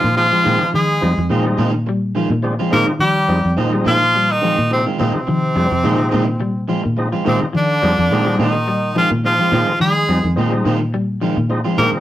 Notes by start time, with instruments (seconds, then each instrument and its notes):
Already playing: trombone F3, tenor saxophone F4
0.03 fingered electric bass A#2, clean electric guitar D#3, muted clean electric guitar stroke
0.15 tonewheel organ F3 G#3 C4 D#4, trombone F3, tenor saxophone F4, muted clean electric guitar stroke
0.31 clean electric guitar F3 G#3 C4 F4
0.44 fingered electric bass A#2, clean electric guitar D#3 G#3 C4 F4, tonewheel organ F3 G#3 C4 D#4
0.60 muted clean electric guitar stroke
0.73 fingered electric bass D#3, clean electric guitar F3, trombone G#3, tenor saxophone G#4, muted clean electric guitar stroke
1.01 fingered electric bass F2, tonewheel organ F3 G#3 C4 D#4, clean electric guitar G3, muted clean electric guitar stroke
1.17 fingered electric bass F2, clean electric guitar F3
1.30 fingered electric bass A#2, clean electric guitar D#3 G#3 C4 F4, tonewheel organ F3 G#3 C4 D#4
1.45 clean electric guitar G3, muted clean electric guitar stroke
1.58 fingered electric bass A#2, clean electric guitar D#3 G#3 C4 F4
1.74 muted clean electric guitar stroke
1.87 clean electric guitar G3, muted clean electric guitar stroke
2.15 clean electric guitar D#3 F3 G#3 F4, muted clean electric guitar stroke
2.30 fingered electric bass A#2, clean electric guitar D#3, muted clean electric guitar stroke
2.43 tonewheel organ F3 G#3 C4 D4, muted clean electric guitar stroke
2.59 clean electric guitar F3 G#3 C4 F4
2.71 fingered electric bass A#2, clean electric guitar D#3 G#3 C4 F4, tonewheel organ F3 G#3 C4 D#4, trombone A#3, tenor saxophone A#4
2.87 muted clean electric guitar stroke, muted fingered electric bass stroke
2.99 fingered electric bass D#3, clean electric guitar F3, trombone G3, tenor saxophone G4, muted clean electric guitar stroke
3.28 fingered electric bass F2, tonewheel organ F3 G#3 C4 D#4, clean electric guitar G3, muted clean electric guitar stroke
3.45 fingered electric bass F2, muted clean electric guitar stroke
3.57 fingered electric bass A#2, clean electric guitar D#3 G#3 C4 F4, tonewheel organ F3 G#3 C4 D#4
3.73 clean electric guitar G3, muted clean electric guitar stroke
3.85 fingered electric bass A#2, clean electric guitar D#3 C4 F4, trombone F3, tenor saxophone F4, muted clean electric guitar stroke
4.01 muted clean electric guitar stroke
4.14 clean electric guitar G3, muted clean electric guitar stroke
4.32 trombone D#3, tenor saxophone D#4
4.41 clean electric guitar D#3 F3 G#3 C4 F4
4.58 fingered electric bass A#2, clean electric guitar D#3, muted clean electric guitar stroke
4.71 trombone C3, tonewheel organ F3 G#3 C4 D#4, tenor saxophone C4, muted clean electric guitar stroke
4.86 clean electric guitar D#3 G#3 C4 F4
4.98 fingered electric bass A#2, trombone C3, clean electric guitar D#3 G#3 C4 F4, tonewheel organ F3 G#3 C4 D#4, tenor saxophone C4
5.14 muted clean electric guitar stroke, muted fingered electric bass stroke
5.27 fingered electric bass D#3, clean electric guitar F3, muted clean electric guitar stroke
5.55 fingered electric bass F2, tonewheel organ F3 G#3 C4 D4, clean electric guitar G3, muted clean electric guitar stroke
5.71 fingered electric bass F2, clean electric guitar F3
5.83 fingered electric bass A#2, clean electric guitar D#3 G#3 C4 F4, tonewheel organ F3 G#3 C4 D#4
5.98 muted clean electric guitar stroke
6.12 fingered electric bass A#2, clean electric guitar D#3 G#3 C4 F4
6.27 muted clean electric guitar stroke
6.40 clean electric guitar G3, muted clean electric guitar stroke
6.68 clean electric guitar F3 G#3 C4 F4, muted clean electric guitar stroke
6.83 fingered electric bass A#2, clean electric guitar D#3, muted clean electric guitar stroke
6.97 tonewheel organ F3 G#3 C4 D#4, muted clean electric guitar stroke
7.12 clean electric guitar F3 G#3 C4 F4
7.25 fingered electric bass A#2, trombone C3, clean electric guitar D#3 G#3 C4 F4, tonewheel organ F3 G#3 C4 D#4, tenor saxophone C4
7.41 muted clean electric guitar stroke, muted fingered electric bass stroke
7.53 trombone D3, fingered electric bass D#3, clean electric guitar F3, tenor saxophone D4, muted clean electric guitar stroke
7.82 fingered electric bass F2, tonewheel organ F3 G#3 C4 D#4, clean electric guitar G3, muted clean electric guitar stroke
7.98 fingered electric bass F2, clean electric guitar F3
8.11 fingered electric bass A#2, clean electric guitar D#3 G#3 C4 F4, tonewheel organ F3 G#3 C4 D#4
8.26 clean electric guitar G3, muted clean electric guitar stroke
8.39 fingered electric bass A#2, clean electric guitar D#3 G#3 C4 F4, trombone D#3, tenor saxophone D#4
8.55 muted clean electric guitar stroke
8.67 clean electric guitar G3, muted clean electric guitar stroke
8.95 clean electric guitar D#3 F3 G#3 C4 F4, trombone F3, tenor saxophone F4
9.11 fingered electric bass A#2, clean electric guitar D#3, muted clean electric guitar stroke
9.24 tonewheel organ F3 G#3 C4 D#4, trombone F3, tenor saxophone F4, muted clean electric guitar stroke
9.39 clean electric guitar F3 G#3 C4 F4
9.52 fingered electric bass A#2, clean electric guitar D#3 G#3 C4 F4, tonewheel organ F3 G#3 C4 D#4
9.68 muted clean electric guitar stroke
9.80 fingered electric bass D#3, clean electric guitar F3, trombone G#3, tenor saxophone G#4, muted clean electric guitar stroke
10.09 fingered electric bass F2, tonewheel organ F3 G#3 C4 D#4, clean electric guitar G3, muted clean electric guitar stroke
10.24 fingered electric bass F2, clean electric guitar D#3
10.36 fingered electric bass A#2, clean electric guitar D#3 G#3 C4 F4, tonewheel organ F3 G#3 C4 D#4
10.52 clean electric guitar G3, muted clean electric guitar stroke
10.65 fingered electric bass A#2, clean electric guitar D#3 G#3 C4 F4
10.81 muted clean electric guitar stroke
10.94 clean electric guitar G3, muted clean electric guitar stroke
11.21 clean electric guitar D#3 F3 G#3 C4 F4
11.37 fingered electric bass A#2, clean electric guitar D#3, muted clean electric guitar stroke
11.49 tonewheel organ F3 G#3 C4 D#4, muted clean electric guitar stroke
11.64 clean electric guitar F3 G#3 C4 F4
11.77 fingered electric bass A#2, clean electric guitar D#3 G#3 C4 F4, tonewheel organ F3 G#3 C4 D#4, trombone A#3, tenor saxophone A#4
11.93 muted clean electric guitar stroke